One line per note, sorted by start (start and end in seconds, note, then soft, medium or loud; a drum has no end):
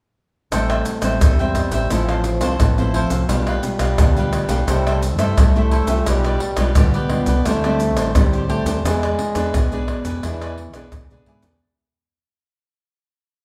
0.52 0.82 A1 medium
0.52 1.18 A2 medium
0.52 0.99 G3 medium
0.52 1.23 A3 medium
0.52 0.99 C4 medium
0.52 0.99 E4 medium
0.52 0.68 A4 medium
0.52 0.68 C5 medium
0.52 0.69 E5 medium
0.52 0.68 G5 medium
0.52 pandeiro medium
0.52 tamborim medium
0.52 maracas medium
0.52 surdo medium
0.70 0.84 C5 medium
0.70 0.85 E5 medium
0.70 0.85 G5 medium
0.70 pandeiro soft
0.70 tamborim medium
0.70 maracas soft
0.85 muted cavaquinho stroke soft
0.85 pandeiro medium
0.85 maracas medium
1.02 1.18 A1 medium
1.02 1.32 G3 medium
1.02 1.32 C4 medium
1.02 1.32 E4 medium
1.02 1.20 C5 medium
1.02 1.19 E5 medium
1.02 1.19 G5 medium
1.02 pandeiro medium
1.02 tamborim medium
1.02 maracas medium
1.21 1.66 E2 medium
1.21 1.87 E3 medium
1.21 1.92 G3 medium
1.21 1.37 A4 soft
1.21 1.38 C5 soft
1.21 1.38 E5 medium
1.21 1.38 G5 medium
1.21 pandeiro medium
1.21 tamborim medium
1.21 maracas medium
1.21 surdo loud
1.39 1.86 G3 medium
1.39 1.86 C4 medium
1.39 1.86 E4 medium
1.39 1.73 C5 medium
1.39 1.72 E5 medium
1.39 1.71 G5 medium
1.39 pandeiro soft
1.39 maracas soft
1.55 pandeiro soft
1.55 tamborim medium
1.55 maracas medium
1.55 surdo medium
1.72 1.87 A1 medium
1.72 1.90 C5 medium
1.72 1.89 E5 medium
1.72 1.89 G5 medium
1.72 pandeiro medium
1.72 maracas medium
1.90 2.41 A1 loud
1.90 2.56 A2 medium
1.90 2.61 F3 loud
1.90 2.37 F3 medium
1.90 2.37 C4 medium
1.90 2.06 E4 medium
1.90 2.37 E4 medium
1.90 2.07 A4 medium
1.90 2.07 C5 soft
1.90 2.07 F5 medium
1.90 pandeiro medium
1.90 tamborim medium
1.90 maracas medium
1.90 surdo medium
2.09 2.24 A4 medium
2.09 2.25 C5 medium
2.09 2.25 F5 medium
2.09 pandeiro soft
2.09 tamborim medium
2.09 maracas soft
2.24 muted cavaquinho stroke soft
2.24 pandeiro medium
2.24 maracas medium
2.41 2.56 C2 medium
2.41 2.71 F3 medium
2.41 2.71 C4 medium
2.41 2.71 E4 medium
2.41 2.76 A4 soft
2.41 2.76 C5 medium
2.41 2.75 F5 medium
2.41 pandeiro medium
2.41 tamborim medium
2.41 maracas medium
2.60 3.04 A1 medium
2.60 3.26 A2 medium
2.60 2.96 E3 medium
2.60 pandeiro medium
2.60 tamborim medium
2.60 maracas medium
2.60 surdo medium
2.77 3.24 F3 medium
2.77 3.24 C4 medium
2.77 3.24 E4 medium
2.77 2.94 A4 medium
2.77 2.94 C5 medium
2.77 2.94 F5 medium
2.77 pandeiro soft
2.77 maracas soft
2.94 3.31 F3 medium
2.94 3.10 E4 medium
2.94 3.11 A4 medium
2.94 3.11 C5 medium
2.94 3.10 F5 medium
2.94 pandeiro medium
3.10 3.26 C2 medium
3.10 3.28 A4 soft
3.10 3.28 C5 soft
3.10 3.27 F5 soft
3.10 pandeiro medium
3.10 maracas medium
3.28 3.58 B1 medium
3.28 3.95 B2 soft
3.28 3.58 G3 medium
3.28 4.68 G3 loud
3.28 3.58 D4 medium
3.28 3.46 D4 soft
3.28 3.58 F4 medium
3.28 3.46 G4 medium
3.28 3.46 B4 medium
3.28 3.46 F5 medium
3.28 pandeiro medium
3.28 tamborim medium
3.28 maracas medium
3.28 surdo medium
3.47 3.63 G4 medium
3.47 3.64 B4 medium
3.47 3.63 F5 medium
3.47 pandeiro soft
3.47 tamborim medium
3.47 maracas soft
3.63 3.96 G3 medium
3.63 3.96 D4 soft
3.63 3.96 F4 medium
3.63 muted cavaquinho stroke soft
3.63 pandeiro medium
3.63 maracas medium
3.79 3.95 B1 medium
3.79 3.98 G4 medium
3.79 3.97 B4 medium
3.79 3.97 F5 medium
3.79 pandeiro medium
3.79 tamborim medium
3.79 maracas medium
3.98 4.43 D2 medium
3.98 4.64 B2 medium
3.98 4.15 D4 medium
3.98 4.15 G4 medium
3.98 4.16 B4 medium
3.98 4.16 F5 medium
3.98 pandeiro medium
3.98 tamborim medium
3.98 maracas medium
3.98 surdo loud
4.17 4.45 G3 medium
4.17 4.46 D4 medium
4.17 4.46 F4 medium
4.17 4.50 G4 medium
4.17 4.49 B4 medium
4.17 4.48 F5 medium
4.17 pandeiro soft
4.17 maracas soft
4.33 pandeiro medium
4.33 tamborim medium
4.33 maracas medium
4.48 4.64 B1 medium
4.48 5.14 A3 medium
4.48 5.14 E4 medium
4.48 5.14 G4 medium
4.48 4.67 G4 medium
4.48 4.66 B4 medium
4.48 4.66 F5 medium
4.48 pandeiro medium
4.48 maracas medium
4.67 5.18 C2 loud
4.67 5.34 C3 medium
4.67 5.07 G3 loud
4.67 4.84 E4 soft
4.67 4.85 A4 medium
4.67 4.85 C5 medium
4.67 4.85 E5 medium
4.67 pandeiro medium
4.67 tamborim medium
4.67 maracas medium
4.67 surdo medium
4.86 5.01 A4 medium
4.86 5.02 C5 medium
4.86 5.02 E5 medium
4.86 pandeiro soft
4.86 tamborim medium
4.86 maracas soft
5.02 muted cavaquinho stroke soft
5.02 pandeiro medium
5.02 maracas medium
5.18 5.33 G2 medium
5.18 5.48 A3 medium
5.18 5.48 E4 medium
5.18 5.49 G4 medium
5.18 5.54 A4 medium
5.18 5.53 C5 medium
5.18 5.53 E5 medium
5.18 pandeiro medium
5.18 tamborim medium
5.18 maracas medium
5.37 5.81 C2 medium
5.37 5.87 G3 medium
5.37 6.08 A3 loud
5.37 pandeiro medium
5.37 tamborim medium
5.37 maracas medium
5.37 surdo loud
5.55 5.84 A3 medium
5.55 5.84 E4 medium
5.55 5.84 G4 medium
5.55 5.71 A4 medium
5.55 5.72 C5 medium
5.55 5.71 E5 medium
5.55 pandeiro soft
5.55 maracas soft
5.71 5.88 E4 medium
5.71 5.88 A4 medium
5.71 5.88 C5 medium
5.71 5.88 E5 medium
5.71 pandeiro medium
5.87 6.03 C2 medium
5.87 6.35 G3 medium
5.87 6.35 D4 medium
5.87 6.36 F4 medium
5.87 6.05 C5 soft
5.87 6.05 E5 medium
5.87 pandeiro medium
5.87 maracas medium
5.91 6.06 A4 soft
6.06 6.36 B1 medium
6.06 6.73 B2 soft
6.06 6.75 G3 loud
6.06 6.23 F4 soft
6.06 6.24 G4 medium
6.06 6.24 B4 medium
6.06 6.24 D5 medium
6.06 pandeiro medium
6.06 tamborim medium
6.06 maracas medium
6.06 surdo medium
6.24 6.41 G4 soft
6.24 6.41 B4 medium
6.24 6.41 D5 medium
6.24 pandeiro soft
6.24 tamborim medium
6.24 maracas soft
6.40 muted cavaquinho stroke soft
6.40 pandeiro medium
6.57 6.73 B1 medium
6.57 6.70 G3 medium
6.57 6.70 D4 medium
6.57 6.70 F4 medium
6.57 6.75 G4 medium
6.57 6.75 B4 medium
6.57 6.74 D5 medium
6.57 pandeiro medium
6.57 tamborim medium
6.57 maracas medium
6.75 7.20 D2 medium
6.75 7.42 B2 medium
6.75 6.97 G3 medium
6.75 7.47 B3 loud
6.75 6.97 D4 medium
6.75 6.92 F4 medium
6.75 6.97 F4 medium
6.75 6.93 G4 medium
6.75 6.93 B4 medium
6.75 6.93 D5 medium
6.75 pandeiro medium
6.75 tamborim medium
6.75 maracas medium
6.75 surdo loud
6.94 7.28 G4 medium
6.94 7.27 B4 medium
6.94 7.26 D5 medium
6.94 pandeiro soft
6.94 maracas soft
7.10 7.31 G3 medium
7.10 7.31 D4 medium
7.10 7.32 F4 medium
7.10 pandeiro medium
7.10 tamborim medium
7.26 7.42 C2 loud
7.26 7.45 G4 medium
7.26 7.44 B4 medium
7.26 7.44 D5 medium
7.26 pandeiro medium
7.26 maracas medium
7.45 7.96 D2 loud
7.45 8.12 D3 medium
7.45 7.58 G3 medium
7.45 8.14 A3 loud
7.45 7.58 C4 medium
7.45 7.62 D4 soft
7.45 7.58 E4 medium
7.45 7.62 G4 medium
7.45 7.62 C5 medium
7.45 7.63 D5 medium
7.45 pandeiro medium
7.45 tamborim medium
7.45 maracas medium
7.45 surdo medium
7.64 8.10 G3 medium
7.64 8.10 C4 medium
7.64 8.11 E4 medium
7.64 7.80 G4 medium
7.64 7.80 C5 medium
7.64 7.80 D5 medium
7.64 pandeiro soft
7.64 tamborim medium
7.64 maracas soft
7.80 muted cavaquinho stroke soft
7.80 pandeiro medium
7.80 maracas medium
7.96 8.12 A1 medium
7.96 8.31 G4 soft
7.96 8.31 C5 medium
7.96 8.30 D5 medium
7.96 pandeiro medium
7.96 tamborim medium
7.96 maracas medium
8.15 8.59 D2 medium
8.15 8.81 A2 medium
8.15 8.47 G3 medium
8.15 8.79 G3 medium
8.15 8.79 C4 medium
8.15 8.80 E4 medium
8.15 pandeiro medium
8.15 tamborim medium
8.15 maracas medium
8.15 surdo loud
8.33 8.48 G4 medium
8.33 8.49 C5 medium
8.33 8.49 D5 medium
8.33 pandeiro soft
8.33 maracas soft
8.48 8.86 A3 medium
8.48 8.65 D4 medium
8.48 8.66 G4 medium
8.48 8.66 C5 medium
8.48 8.65 D5 medium
8.48 pandeiro medium
8.65 8.81 D#2 medium
8.65 8.84 G4 soft
8.65 8.83 C5 soft
8.65 8.83 D5 medium
8.65 pandeiro medium
8.65 maracas medium
8.84 9.14 E2 medium
8.84 9.51 E3 medium
8.84 9.96 G#3 loud
8.84 9.31 B3 soft
8.84 9.31 D4 medium
8.84 9.01 E4 medium
8.84 9.32 G#4 medium
8.84 9.01 G#4 soft
8.84 9.02 B4 medium
8.84 9.02 D5 medium
8.84 pandeiro medium
8.84 tamborim medium
8.84 maracas medium
8.84 surdo medium
9.03 9.19 G#4 medium
9.03 9.19 B4 medium
9.03 9.18 D5 medium
9.03 pandeiro soft
9.03 tamborim medium
9.03 maracas soft
9.19 muted cavaquinho stroke soft
9.19 pandeiro medium
9.35 9.51 E2 medium
9.35 9.65 B3 medium
9.35 9.65 D4 medium
9.35 9.65 G#4 medium
9.35 9.53 G#4 medium
9.35 9.53 B4 medium
9.35 9.53 D5 medium
9.35 pandeiro medium
9.35 tamborim medium
9.35 maracas medium
9.54 9.98 B1 medium
9.54 10.20 B2 medium
9.54 9.70 E4 soft
9.54 9.71 G#4 medium
9.54 9.71 B4 medium
9.54 9.71 D5 medium
9.54 pandeiro medium
9.54 tamborim medium
9.54 maracas medium
9.54 surdo loud
9.72 10.18 B3 medium
9.72 10.18 D4 medium
9.72 10.19 G#4 medium
9.72 10.06 G#4 medium
9.72 10.05 B4 medium
9.72 10.04 D5 medium
9.72 pandeiro soft
9.72 maracas soft
9.88 pandeiro medium
9.88 tamborim medium
10.05 10.20 E2 medium
10.05 10.22 G#4 medium
10.05 10.22 B4 medium
10.05 10.22 D5 medium
10.05 pandeiro medium
10.05 maracas medium
10.23 10.73 E2 loud
10.23 10.89 E3 loud
10.23 10.90 E3 medium
10.23 10.56 B3 medium
10.23 10.57 D4 medium
10.23 10.40 E4 medium
10.23 10.40 G#4 soft
10.23 10.57 G#4 medium
10.23 10.40 B4 medium
10.23 10.41 D5 medium
10.23 pandeiro medium
10.23 tamborim medium
10.23 maracas medium
10.23 surdo medium
10.42 10.58 G#4 medium
10.42 10.58 B4 medium
10.42 10.57 D5 medium
10.42 pandeiro soft
10.42 tamborim medium
10.42 maracas soft
10.58 muted cavaquinho stroke soft
10.58 pandeiro medium
10.73 10.89 B1 medium
10.73 11.04 B3 medium
10.73 11.04 D4 medium
10.73 11.04 G#4 medium
10.73 11.09 G#4 medium
10.73 11.09 B4 medium
10.73 11.09 D5 medium
10.73 pandeiro medium
10.73 tamborim medium
10.73 maracas medium
10.92 11.07 E2 medium
10.92 11.59 B2 medium
10.92 11.58 D3 medium
10.92 pandeiro medium
10.92 tamborim medium
10.92 maracas medium
10.92 surdo loud
11.11 11.26 B2 medium
11.11 11.57 B3 medium
11.11 11.57 D4 medium
11.11 11.57 G#4 medium
11.11 11.27 G#4 medium
11.11 11.27 B4 medium
11.11 11.27 D5 medium
11.11 pandeiro soft
11.11 maracas soft
11.26 11.42 G#2 medium
11.26 11.43 E4 medium
11.26 11.44 G#4 medium
11.26 11.44 B4 medium
11.26 11.42 D5 medium
11.26 pandeiro medium
11.43 11.59 E2 medium
11.43 11.61 G#4 soft
11.43 11.61 B4 soft
11.43 11.60 D5 medium
11.43 pandeiro medium
11.43 maracas medium